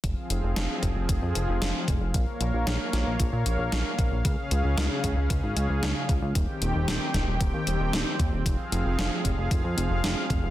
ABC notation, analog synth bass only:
X:1
M:4/4
L:1/16
Q:1/4=114
K:Fm
V:1 name="Analog synth bass" clef=bass
F,,, z F,,, F,,, F,,, z F,,, F,,, F,,, F,, F,,, F,,, F,,, z F,,, F,,, | B,,, z B,,, B,,, B,,, z B,,, B,,, B,,, B,, B,,, B,,, B,,, z B,,, B,,, | D,, z D,, D,, D,, z D,, D,, D,, A,,, D,, D,, D,, z D,, D,, | E,,, z E,,, E,,, E,,, z E,,, E,,, E,,, E,, E,,, E,,, E,,, z E,, E,,, |
F,,, z F,,, F,,, F,,, z F,,, F,,, F,,, F,, F,,, F,,, F,,, z F,,, F,,, |]